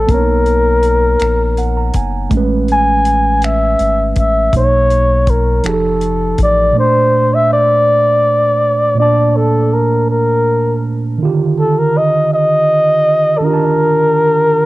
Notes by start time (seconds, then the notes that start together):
Already playing: A4
0.07 B1 A#3 B3 A#4, kick, closed hi-hat
0.12 C#4 C#5
0.19 D#4
0.46 closed hi-hat
0.83 closed hi-hat
1.20 A#1, finger snap, closed hi-hat
1.57 F#5, closed hi-hat
1.77 A#5
1.94 F#1 G#5, kick, closed hi-hat
2.30 A1 G#3 A3, kick, closed hi-hat
2.34 C#4 B4
2.68 G#5, closed hi-hat
3.05 closed hi-hat
3.42 E5, finger snap, closed hi-hat
3.79 G#1, closed hi-hat
4.16 A1 E5, kick, closed hi-hat
4.53 B1 B2 A#3 D#4 C#5, kick, closed hi-hat
4.90 closed hi-hat
5.27 A#4, kick, closed hi-hat
5.64 F1 F3 D#4 G4 G#4 A4, finger snap, closed hi-hat
5.74 A4
6.01 closed hi-hat
6.38 A1, kick, closed hi-hat
6.43 D5
6.73 A#2 A3
6.78 D4 C5
7.34 E5
7.53 D5
8.95 A#2 A#3
9.00 D4 D5 A5
9.36 A4
9.74 A#4
10.11 A#4
11.18 D3 D#3
11.23 F4 G4
11.59 A4
11.78 A#4
11.97 D#5
12.34 D#5
13.38 D#3 A4
13.42 D4 F4 A#4
13.47 G4
13.53 A5